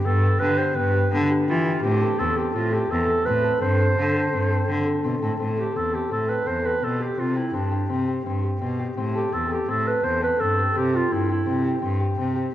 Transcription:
Already playing: harp G4
0.04 cello G2, harp B3, clarinet A4
0.23 harp G4
0.39 cello D3, harp B3, clarinet B4
0.58 harp G4, clarinet C5
0.75 cello G2, harp B3, clarinet B4
0.93 harp G4
1.12 cello D3, harp B3
1.30 harp G4
1.47 cello E3, harp B3, clarinet F4
1.66 harp G4
1.82 cello A2, harp C4, clarinet G4
2.02 harp A4
2.19 cello E2, harp C4, clarinet A4
2.37 clarinet G4, harp A4
2.50 clarinet G4
2.55 cello A2, harp C4, clarinet F4
2.73 clarinet G4, harp A4
2.90 cello E2, harp C4, clarinet A4
3.08 harp A4
3.26 cello A2, harp C4, clarinet B4
3.44 harp A4
3.61 cello G2, harp C4, clarinet C5
3.79 harp A4
3.97 cello D3, harp C4
4.15 harp A4
4.32 cello G2, harp C4
4.50 harp A4
4.68 cello D3, harp C4
4.86 harp A4
5.04 cello B2, harp C4
5.22 cello A2, harp A4
5.39 cello A2, harp C4
5.57 clarinet G4, harp A4
5.75 cello E2, harp C4, clarinet A4
5.93 clarinet G4, harp A4
6.11 cello A2, harp C4, clarinet A4
6.29 harp A4, clarinet B4
6.46 cello E2, harp C4, clarinet C5
6.64 harp A4, clarinet B4
6.82 cello B2, harp C4, clarinet A4
6.99 harp G4, clarinet G4
7.17 cello C3, harp C4, clarinet F4
7.35 clarinet E4, harp G4
7.53 cello G2, harp C4, clarinet D4
7.71 harp G4
7.89 cello C3, harp C4
8.08 harp G4
8.25 cello G2, harp C4
8.43 harp G4
8.61 cello B2, harp C4
8.79 harp G4
8.97 cello A2, harp C4
9.15 clarinet G4, harp A4
9.32 cello E2, harp C4, clarinet A4
9.50 clarinet G4, harp A4
9.68 cello A2, harp C4, clarinet A4
9.85 harp A4, clarinet B4
10.03 cello E2, harp C4, clarinet C5
10.22 harp A4, clarinet B4
10.40 cello G2, harp C4, clarinet A4
10.57 harp G4
10.75 cello C3, harp C4, clarinet G4
10.94 clarinet F4, harp G4
11.11 cello G2, harp C4, clarinet E4
11.29 clarinet E4, harp G4
11.46 cello C3, harp C4
11.64 harp G4
11.82 cello G2, harp C4
12.00 harp G4
12.18 cello C3, harp C4
12.35 harp G4

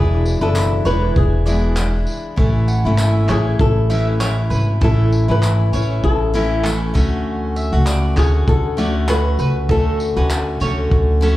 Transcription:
Already playing: upright bass E1, steel-string acoustic guitar E3 G#3 D4 E4, nylon-string guitar G#4, mandolin B4
0.25 tambourine
0.41 upright bass F#1, steel-string acoustic guitar E2 B2 E3 D4 E4, nylon-string guitar A4, mandolin B4
0.55 clap, tambourine
0.85 upright bass E1, steel-string acoustic guitar E3 G#3 D4 E4, nylon-string guitar B4, mandolin C#5, tambourine
1.16 upright bass E1, nylon-string guitar G#4, kick
1.46 steel-string acoustic guitar E2 B2 E3 G#3 D4 E4, mandolin D5, tambourine
1.77 steel-string acoustic guitar E3 G#3 D4 E4, clap, tambourine
2.07 tambourine
2.36 upright bass A1, steel-string acoustic guitar E3 A3 C#4 E4, kick
2.68 mandolin F#5, tambourine
2.84 upright bass G#1, steel-string acoustic guitar E3 A3 C#4 E4
2.98 mandolin E5, clap, tambourine
3.28 upright bass A1, steel-string acoustic guitar E3 A3 C#4 E4, nylon-string guitar G#4, mandolin C#5, clap, tambourine
3.59 upright bass A1, nylon-string guitar A4, kick
3.90 steel-string acoustic guitar A2 E3 A3 C#4 E4, mandolin E5, tambourine
4.20 steel-string acoustic guitar E3 A3 C#4 E4, mandolin C#5, clap, tambourine
4.50 upright bass G#1, mandolin B4, tambourine
4.81 upright bass A1, steel-string acoustic guitar E3 A3 C#4 E4, mandolin A4, nylon-string guitar A4, kick
5.12 tambourine
5.28 upright bass G#1, steel-string acoustic guitar E3 A3 C#4 E4, mandolin B4, nylon-string guitar B4
5.43 clap, tambourine
5.73 upright bass A1, steel-string acoustic guitar E3 A3 C#4 E4, mandolin C#5, nylon-string guitar C#5, tambourine
6.04 upright bass A1, nylon-string guitar A4, kick
6.34 steel-string acoustic guitar A2 E3 A3 C#4 E4, mandolin A4, tambourine
6.63 steel-string acoustic guitar E3 A3 C#4 E4, clap, tambourine
6.94 upright bass D2, steel-string acoustic guitar D3 A3 C#4 F#4, kick, tambourine
7.56 mandolin E5, tambourine
7.72 upright bass C#2, steel-string acoustic guitar A3 F#4
7.87 mandolin D5, clap, tambourine
8.16 upright bass D2, steel-string acoustic guitar D3 A3 C#4 F#4, nylon-string guitar G#4, mandolin C#5, clap, tambourine
8.48 upright bass D2, nylon-string guitar A4, kick
8.77 steel-string acoustic guitar D3 A3 C#4 F#4, mandolin D5, tambourine
9.08 steel-string acoustic guitar A3 C#4 F#4, nylon-string guitar B4, mandolin C#5, clap, tambourine
9.38 upright bass C#2, mandolin B4, tambourine
9.69 upright bass D2, steel-string acoustic guitar D3 A3 C#4 F#4, mandolin A4, nylon-string guitar A4, kick
10.00 tambourine
10.16 upright bass D2, steel-string acoustic guitar D3 A3 C#4 F#4, mandolin B4
10.30 clap, tambourine
10.60 upright bass D2, steel-string acoustic guitar D3 A3 C#4 F#4, mandolin C#5, tambourine
10.91 upright bass D2, kick
11.21 steel-string acoustic guitar D3 A3 C#4 F#4, mandolin A4, tambourine

